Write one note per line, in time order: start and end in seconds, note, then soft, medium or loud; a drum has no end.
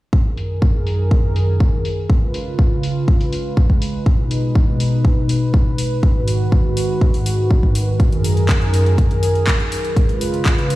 0.13 2.08 F#2 medium
0.13 2.08 D#3 medium
0.13 2.08 G#4 medium
0.13 2.08 A#4 medium
0.13 kick loud
0.37 open hi-hat medium
0.62 kick loud
0.87 open hi-hat medium
1.11 kick loud
1.36 open hi-hat loud
1.60 kick loud
1.85 open hi-hat medium
2.10 4.04 C#3 medium
2.10 5.99 G#3 medium
2.10 4.04 F4 medium
2.10 7.96 B4 medium
2.10 kick loud
2.34 open hi-hat loud
2.59 kick loud
2.83 open hi-hat loud
3.08 kick loud
3.21 open hi-hat medium
3.33 open hi-hat loud
3.57 kick loud
3.70 kick medium
3.82 open hi-hat loud
4.06 6.01 B2 medium
4.06 6.01 D#4 medium
4.06 kick loud
4.31 open hi-hat loud
4.55 kick loud
4.80 open hi-hat loud
5.05 kick loud
5.29 open hi-hat loud
5.54 kick loud
5.78 open hi-hat loud
6.03 7.98 G#2 medium
6.03 9.93 D#3 medium
6.03 7.98 F#4 medium
6.03 kick loud
6.28 open hi-hat loud
6.52 kick loud
6.77 open hi-hat loud
7.01 kick loud
7.14 open hi-hat medium
7.26 open hi-hat loud
7.51 kick loud
7.63 kick medium
7.75 open hi-hat loud
8.00 9.95 F#2 medium
8.00 9.95 G#4 medium
8.00 9.95 A#4 medium
8.00 kick loud
8.00 closed hi-hat medium
8.12 closed hi-hat soft
8.24 open hi-hat medium
8.37 closed hi-hat soft
8.49 kick loud
8.49 clap loud
8.49 closed hi-hat medium
8.62 closed hi-hat soft
8.74 open hi-hat loud
8.86 closed hi-hat soft
8.98 kick loud
8.98 closed hi-hat medium
9.11 closed hi-hat soft
9.23 open hi-hat loud
9.35 closed hi-hat soft
9.47 kick loud
9.47 clap loud
9.47 closed hi-hat medium
9.60 closed hi-hat soft
9.72 open hi-hat medium
9.85 closed hi-hat soft
9.96 10.76 C#3 medium
9.96 10.76 G#3 medium
9.96 10.76 F4 medium
9.96 10.76 B4 medium
9.96 kick loud
9.96 closed hi-hat medium
10.09 closed hi-hat soft
10.21 open hi-hat medium
10.34 closed hi-hat soft
10.46 kick loud
10.46 clap loud
10.46 closed hi-hat medium
10.58 closed hi-hat soft
10.70 open hi-hat medium